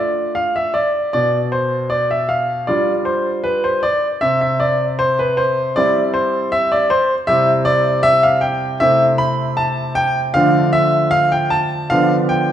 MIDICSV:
0, 0, Header, 1, 2, 480
1, 0, Start_track
1, 0, Key_signature, 0, "major"
1, 0, Tempo, 773196
1, 705, Time_signature, 4, 2, 24, 8
1, 3581, Tempo, 763359
1, 6461, Tempo, 784314
1, 7792, End_track
2, 0, Start_track
2, 0, Title_t, "Grand piano"
2, 0, Program_c, 0, 0
2, 0, Note_on_c, 0, 57, 42
2, 0, Note_on_c, 0, 62, 44
2, 0, Note_on_c, 0, 65, 43
2, 0, Note_on_c, 0, 74, 71
2, 193, Note_off_c, 0, 74, 0
2, 217, Note_on_c, 0, 77, 80
2, 340, Note_off_c, 0, 77, 0
2, 346, Note_on_c, 0, 76, 72
2, 434, Note_off_c, 0, 57, 0
2, 436, Note_off_c, 0, 62, 0
2, 438, Note_off_c, 0, 65, 0
2, 458, Note_on_c, 0, 74, 84
2, 465, Note_off_c, 0, 76, 0
2, 694, Note_off_c, 0, 74, 0
2, 703, Note_on_c, 0, 74, 80
2, 710, Note_on_c, 0, 47, 54
2, 848, Note_off_c, 0, 74, 0
2, 943, Note_on_c, 0, 72, 77
2, 1178, Note_on_c, 0, 74, 82
2, 1183, Note_off_c, 0, 72, 0
2, 1300, Note_off_c, 0, 74, 0
2, 1308, Note_on_c, 0, 76, 76
2, 1420, Note_on_c, 0, 77, 76
2, 1425, Note_off_c, 0, 76, 0
2, 1639, Note_off_c, 0, 47, 0
2, 1659, Note_on_c, 0, 74, 81
2, 1660, Note_off_c, 0, 77, 0
2, 1666, Note_on_c, 0, 55, 45
2, 1669, Note_on_c, 0, 62, 45
2, 1670, Note_on_c, 0, 65, 49
2, 1803, Note_off_c, 0, 74, 0
2, 1895, Note_on_c, 0, 72, 70
2, 2133, Note_on_c, 0, 71, 83
2, 2136, Note_off_c, 0, 72, 0
2, 2255, Note_off_c, 0, 71, 0
2, 2259, Note_on_c, 0, 72, 75
2, 2353, Note_off_c, 0, 55, 0
2, 2355, Note_off_c, 0, 62, 0
2, 2355, Note_off_c, 0, 65, 0
2, 2376, Note_on_c, 0, 74, 89
2, 2379, Note_off_c, 0, 72, 0
2, 2520, Note_off_c, 0, 74, 0
2, 2614, Note_on_c, 0, 76, 95
2, 2621, Note_on_c, 0, 48, 60
2, 2730, Note_off_c, 0, 76, 0
2, 2740, Note_on_c, 0, 76, 77
2, 2854, Note_on_c, 0, 74, 82
2, 2858, Note_off_c, 0, 76, 0
2, 2999, Note_off_c, 0, 74, 0
2, 3096, Note_on_c, 0, 72, 91
2, 3218, Note_off_c, 0, 72, 0
2, 3222, Note_on_c, 0, 71, 80
2, 3335, Note_on_c, 0, 72, 83
2, 3342, Note_off_c, 0, 71, 0
2, 3559, Note_off_c, 0, 48, 0
2, 3575, Note_on_c, 0, 74, 92
2, 3579, Note_off_c, 0, 72, 0
2, 3582, Note_on_c, 0, 55, 50
2, 3584, Note_on_c, 0, 60, 53
2, 3586, Note_on_c, 0, 64, 54
2, 3722, Note_off_c, 0, 74, 0
2, 3812, Note_on_c, 0, 72, 84
2, 4053, Note_on_c, 0, 76, 94
2, 4056, Note_off_c, 0, 72, 0
2, 4176, Note_off_c, 0, 76, 0
2, 4178, Note_on_c, 0, 74, 86
2, 4269, Note_off_c, 0, 55, 0
2, 4270, Note_off_c, 0, 60, 0
2, 4272, Note_off_c, 0, 64, 0
2, 4294, Note_on_c, 0, 72, 92
2, 4297, Note_off_c, 0, 74, 0
2, 4437, Note_off_c, 0, 72, 0
2, 4526, Note_on_c, 0, 76, 92
2, 4534, Note_on_c, 0, 48, 64
2, 4534, Note_on_c, 0, 55, 46
2, 4536, Note_on_c, 0, 60, 46
2, 4542, Note_on_c, 0, 64, 45
2, 4673, Note_off_c, 0, 76, 0
2, 4764, Note_on_c, 0, 74, 97
2, 5003, Note_on_c, 0, 76, 112
2, 5009, Note_off_c, 0, 74, 0
2, 5128, Note_off_c, 0, 76, 0
2, 5130, Note_on_c, 0, 77, 81
2, 5242, Note_on_c, 0, 79, 89
2, 5252, Note_off_c, 0, 77, 0
2, 5464, Note_off_c, 0, 79, 0
2, 5468, Note_off_c, 0, 48, 0
2, 5468, Note_off_c, 0, 55, 0
2, 5469, Note_off_c, 0, 60, 0
2, 5472, Note_off_c, 0, 64, 0
2, 5488, Note_on_c, 0, 76, 102
2, 5495, Note_on_c, 0, 48, 67
2, 5495, Note_on_c, 0, 57, 47
2, 5498, Note_on_c, 0, 60, 51
2, 5502, Note_on_c, 0, 64, 51
2, 5635, Note_off_c, 0, 76, 0
2, 5728, Note_on_c, 0, 83, 96
2, 5970, Note_on_c, 0, 81, 89
2, 5974, Note_off_c, 0, 83, 0
2, 6191, Note_off_c, 0, 81, 0
2, 6212, Note_on_c, 0, 79, 106
2, 6360, Note_off_c, 0, 79, 0
2, 6437, Note_off_c, 0, 48, 0
2, 6438, Note_off_c, 0, 57, 0
2, 6439, Note_off_c, 0, 60, 0
2, 6441, Note_off_c, 0, 64, 0
2, 6455, Note_on_c, 0, 77, 102
2, 6462, Note_on_c, 0, 53, 48
2, 6464, Note_on_c, 0, 50, 72
2, 6468, Note_on_c, 0, 57, 48
2, 6470, Note_on_c, 0, 62, 49
2, 6671, Note_off_c, 0, 77, 0
2, 6693, Note_on_c, 0, 76, 99
2, 6910, Note_off_c, 0, 76, 0
2, 6926, Note_on_c, 0, 77, 107
2, 7052, Note_off_c, 0, 77, 0
2, 7054, Note_on_c, 0, 79, 86
2, 7168, Note_on_c, 0, 81, 96
2, 7177, Note_off_c, 0, 79, 0
2, 7391, Note_off_c, 0, 81, 0
2, 7396, Note_off_c, 0, 53, 0
2, 7397, Note_off_c, 0, 50, 0
2, 7399, Note_off_c, 0, 57, 0
2, 7399, Note_off_c, 0, 62, 0
2, 7410, Note_on_c, 0, 77, 101
2, 7416, Note_on_c, 0, 50, 69
2, 7417, Note_on_c, 0, 53, 52
2, 7421, Note_on_c, 0, 59, 51
2, 7425, Note_on_c, 0, 62, 53
2, 7557, Note_off_c, 0, 77, 0
2, 7649, Note_on_c, 0, 79, 93
2, 7792, Note_off_c, 0, 50, 0
2, 7792, Note_off_c, 0, 53, 0
2, 7792, Note_off_c, 0, 59, 0
2, 7792, Note_off_c, 0, 62, 0
2, 7792, Note_off_c, 0, 79, 0
2, 7792, End_track
0, 0, End_of_file